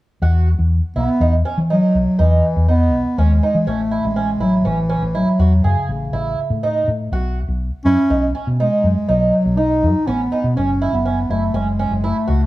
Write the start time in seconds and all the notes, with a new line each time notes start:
0.22 E2 F#4
0.59 E2
0.96 B1 B3 E4
1.20 E2 D#4
1.45 C#4
1.58 E3
1.70 F#3 D#4
1.95 B1
2.19 E2 E3 D#4
2.56 E2
2.68 B3 D#4
2.93 B1
3.18 D#2 G#3 C#4
3.43 D#4
3.55 E3
3.67 A1 A3 C#4
3.91 E4
4.05 A1 G#3
4.16 C#4
4.40 A1 F#3 E4
4.65 A1 E3 C#4
4.89 C#4
5.02 A1
5.15 F#3 E4
5.39 E2 F#4
5.64 F#2 C#3 G#4
5.89 A1
6.13 A1 E4
6.50 A2
6.63 D#4
6.88 A2
7.12 B1 F#4
7.48 B1
7.85 F#2 C#4 E4
8.10 B1 D#4
8.35 C#4
8.47 B2
8.59 G#3 D#4
8.84 F#2
9.08 B1 F#3 D#4
9.46 B1
9.57 D#4
9.83 F#2
10.07 A1 B3 C#4
10.32 D#4
10.44 B2
10.56 F#1 C#4
10.82 E4
10.93 F#1 B3
11.05 C#4
11.30 F#1 A3 E4
11.54 F#1 G#3 C#4
11.79 C#4
11.91 F#1
12.04 A3 E4
12.28 C#2 F#4